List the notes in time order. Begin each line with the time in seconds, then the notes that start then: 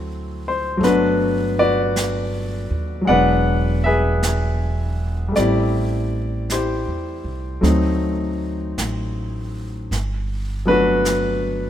Already playing: D2 F#3 A3 C4 E4 F#4 A4
0.48 C5
0.77 G1 F#3 A3
0.83 B3 D4 F#4 B4, brush sweep, snare
1.59 F#4 B4 D5
1.96 brush sweep, snare, hi-hat pedal
2.70 D#2
3.01 F#3 G#3
3.07 E1 B3 B4 D5 F#5, brush sweep
3.13 D4
3.84 G#4 B4 E5
4.23 brush sweep, snare, hi-hat pedal
5.28 G3 A3
5.35 A1 C4 G4 D5, brush sweep, snare
5.40 E4
6.50 E4 G4 C5, brush sweep, snare, hi-hat pedal
6.88 E2
7.24 C2
7.61 D2 F#3 A3 C4 D#4, brush sweep, snare
8.78 A1, brush sweep, snare, hi-hat pedal
9.91 G1, brush sweep, snare
10.66 F#3 A3 B3 D4 B4
10.70 F#4
11.05 brush sweep, snare, hi-hat pedal